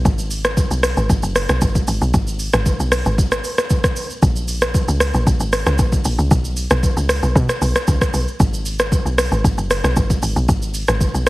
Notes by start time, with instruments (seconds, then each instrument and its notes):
0.05 log drum bass G#1, kick, shaker
0.19 shaker
0.31 open hi-hat, shaker
0.44 cross-stick, shaker
0.57 kick, shaker
0.71 log drum bass B1, shaker
0.83 cross-stick, open hi-hat, shaker
0.97 log drum bass G#1, shaker
1.09 log drum bass G#1, kick, shaker
1.23 log drum bass F#1, shaker
1.36 cross-stick, open hi-hat, shaker
1.49 log drum bass B1, cross-stick, shaker
1.61 log drum bass G#1, kick, shaker
1.75 kick, shaker
1.88 log drum bass G#1, open hi-hat, shaker
2.01 log drum bass B1, shaker
2.14 log drum bass G#1, kick, shaker
2.27 shaker
2.39 open hi-hat, shaker
2.53 log drum bass G#1, cross-stick, shaker
2.66 kick, shaker
2.80 log drum bass B1, shaker
2.92 cross-stick, open hi-hat, shaker
3.06 log drum bass G#1, shaker
3.18 kick, shaker
3.32 cross-stick, shaker
3.44 open hi-hat, shaker
3.58 cross-stick, shaker
3.70 kick, shaker
3.84 kick, cross-stick, shaker
3.96 open hi-hat, shaker
4.10 shaker
4.22 log drum bass A#1, kick, shaker
4.36 shaker
4.48 open hi-hat, shaker
4.61 cross-stick, shaker
4.74 kick, shaker
4.88 log drum bass C#2, shaker
5.00 cross-stick, open hi-hat, shaker
5.14 log drum bass A#1, shaker
5.27 log drum bass A#1, kick, shaker
5.40 log drum bass G#1, shaker
5.53 cross-stick, open hi-hat, shaker
5.66 log drum bass C#2, cross-stick, shaker
5.79 log drum bass A#1, kick, shaker
5.92 kick, shaker
6.05 log drum bass A#1, open hi-hat, shaker
6.18 log drum bass C#2, shaker
6.31 log drum bass B1, kick, shaker
6.45 shaker
6.57 open hi-hat, shaker
6.70 log drum bass B1, cross-stick, shaker
6.83 kick, shaker
6.97 log drum bass C#2, shaker
7.09 cross-stick, open hi-hat, shaker
7.23 log drum bass B1, shaker
7.35 log drum bass B2, kick, shaker
7.49 cross-stick, shaker
7.62 log drum bass B1, open hi-hat, shaker
7.75 cross-stick, shaker
7.88 log drum bass C#2, kick, shaker
8.01 kick, cross-stick, shaker
8.14 log drum bass B1, open hi-hat, shaker
8.28 shaker
8.40 log drum bass G#1, kick, shaker
8.54 shaker
8.66 open hi-hat, shaker
8.79 cross-stick, shaker
8.92 kick, shaker
9.05 log drum bass B1, shaker
9.18 cross-stick, open hi-hat, shaker
9.32 log drum bass G#1, shaker
9.44 log drum bass G#1, kick, shaker
9.58 log drum bass F#1, shaker
9.71 cross-stick, open hi-hat, shaker
9.84 log drum bass B1, cross-stick, shaker
9.96 log drum bass G#1, kick, shaker
10.10 kick, shaker
10.23 log drum bass G#1, open hi-hat, shaker
10.36 log drum bass B1, shaker
10.49 log drum bass G#1, kick, shaker
10.62 shaker
10.74 open hi-hat, shaker
10.88 log drum bass G#1, cross-stick, shaker
11.01 kick, shaker
11.14 log drum bass B1, shaker